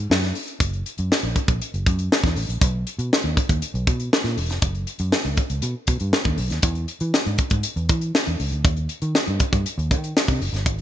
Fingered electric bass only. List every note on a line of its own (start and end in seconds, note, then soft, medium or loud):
0.10 0.31 F#2 medium
0.60 0.82 F#1 loud
0.99 1.09 F#2 loud
1.23 1.34 A#1 loud
1.48 1.59 A#1 medium
1.74 1.84 F#1 loud
1.87 2.08 F#2 loud
2.24 2.34 E2 loud
2.36 2.47 A1 medium
2.49 2.59 A#1 medium
2.61 2.83 B1 loud
2.99 3.09 B2 loud
3.24 3.35 D#2 medium
3.49 3.60 D#2 medium
3.74 3.85 B1 loud
3.87 4.08 B2 loud
4.24 4.35 A#2 loud
4.37 4.50 E1 medium
4.50 4.60 F1 medium
4.62 4.84 F#1 loud
5.00 5.11 F#2 loud
5.25 5.36 C#2 loud
5.50 5.61 C#2 medium
5.63 5.73 B2 loud
5.88 5.99 B2 loud
6.01 6.11 G2 medium
6.25 6.36 D#2 medium
6.38 6.49 B1 medium
6.50 6.61 D#2 medium
6.63 6.85 E2 loud
7.01 7.12 E3 loud
7.26 7.37 G#2 loud
7.51 7.62 G#2 medium
7.76 7.87 E2 loud
7.90 8.11 E3 loud
8.27 8.38 E2 medium
8.40 8.50 C#2 medium
8.52 8.63 D2 medium
8.65 8.86 D#2 loud
9.02 9.13 D#3 loud
9.28 9.38 G2 loud
9.52 9.63 G2 loud
9.78 9.93 D#2 loud
9.91 10.12 D#3 medium
10.28 10.39 C3 medium
10.40 10.51 F#1 medium
10.53 10.66 G1 medium
10.66 10.81 G#1 loud